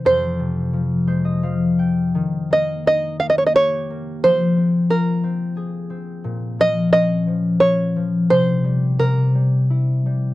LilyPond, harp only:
<<
  \new Staff \with { instrumentName = "Harp" } { \time 3/4 \key f \minor \tempo 4 = 88 r4. c''16 ees''16 f''8 g''8 | r2. | r2. | r2. |
r2. | }
  \new Staff \with { instrumentName = "Harp" } { \clef bass \time 3/4 \key f \minor f,8 c8 f8 aes8 f4 | ees8 bes8 ees'8 bes8 g'8 bes8 | f8 c'8 f'8 c'8 aes'8 c'8 | bes,8 f8 des'8 f8 f'8 f8 |
c8 g8 c8 g8 e'8 g8 | }
>>